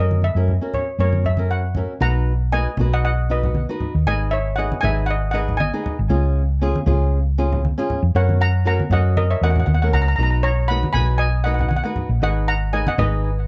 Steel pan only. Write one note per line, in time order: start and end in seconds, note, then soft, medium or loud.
0.00 0.22 D#5 medium
0.24 0.76 E5 medium
0.74 0.99 C#5 medium
1.00 1.12 C#5 medium
1.26 1.52 E5 medium
1.51 1.87 F#5 medium
2.02 2.49 F#5 medium
2.02 2.54 A#5 loud
2.52 2.90 D#5 medium
2.52 2.93 G#5 loud
2.93 3.03 D#5 medium
2.93 3.04 F#5 medium
3.05 3.28 D#5 medium
3.05 3.28 F#5 medium
3.31 3.78 B4 medium
3.31 3.78 D#5 medium
4.07 4.31 D#5 medium
4.07 4.33 G#5 loud
4.31 4.56 C#5 medium
4.31 4.58 E5 loud
4.56 4.70 D#5 medium
4.56 4.68 F#5 loud
4.81 5.07 E5 medium
4.81 5.05 G#5 loud
5.06 5.30 F#5 medium
5.11 5.33 D#5 medium
5.31 5.58 D#5 medium
5.31 5.59 F#5 medium
5.57 5.96 D#5 medium
5.57 5.95 G#5 medium
8.16 8.39 C#5 medium
8.16 8.40 F#5 medium
8.41 8.64 F#5 medium
8.41 8.65 A#5 loud
8.67 8.90 F#5 medium
8.67 8.93 A#5 medium
8.93 9.16 D#5 medium
8.93 9.18 F#5 loud
9.17 9.30 A#4 medium
9.17 9.31 D#5 medium
9.31 9.42 C#5 medium
9.31 9.43 E5 medium
9.43 9.50 D#5 medium
9.43 9.49 F#5 medium
9.50 9.58 F#5 medium
9.60 9.65 F#5 medium
9.66 9.73 F#5 medium
9.74 9.81 F#5 medium
9.82 9.88 F#5 medium
9.93 10.01 F#5 medium
9.93 10.01 A#5 loud
10.02 10.07 A#5 medium
10.08 10.15 A#5 medium
10.16 10.22 A#5 medium
10.23 10.29 A#5 medium
10.31 10.38 A#5 medium
10.43 10.70 C#5 loud
10.43 10.68 A#5 medium
10.68 10.80 F#5 medium
10.68 10.80 B5 loud
10.93 11.17 G#5 medium
10.93 11.17 B5 loud
11.18 11.44 D#5 medium
11.18 11.46 G#5 loud
11.44 11.53 D#5 medium
11.44 11.52 F#5 medium
11.54 11.60 F#5 medium
11.61 11.67 F#5 medium
11.69 11.75 F#5 medium
11.76 11.83 F#5 medium
11.84 11.90 F#5 medium
12.23 12.46 D#5 medium
12.23 12.47 F#5 loud
12.48 12.72 F#5 medium
12.48 12.74 A#5 loud
12.73 12.86 D#5 medium
12.73 12.86 G#5 medium
12.88 12.98 D#5 medium
12.88 13.00 F#5 medium
12.99 13.47 B4 medium
12.99 13.47 D#5 loud